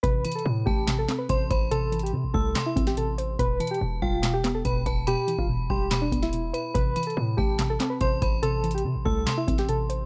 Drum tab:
HH |x-----x-x-x-------------x-----x-----x-----x-----|x-----x-x-x-------------x-----x-----x-----x-----|x-----x-x-x-------------x-----x-----x-----x-----|x-----x-----------------x-----x-----x-----x-----|
CP |------------------------x-----x-----------------|------------------------x-----------------------|------------------------x-----x-----------------|------------------------x-----------------------|
SD |------------------------o-----o-----------------|------------------------o--------o--------------|------------------------o-----o-----------------|------------------------o--------o--------------|
BD |o-----------------o-----------------o-----o-----|------------------o-----------o-----------------|o-----------------o-----------------o-----o-----|---------o--------o-----------o-----------------|

HH |x-----x-x-x-------------x-----x-----x-----x-----|x-----x-x-x-------------x-----x-----x-----x-----|
CP |------------------------x-----x-----------------|------------------------x-----------------------|
SD |------------------------o-----o-----------------|------------------------o--------o--------------|
BD |o-----------------o-----------------o-----o-----|------------------o-----------o-----------------|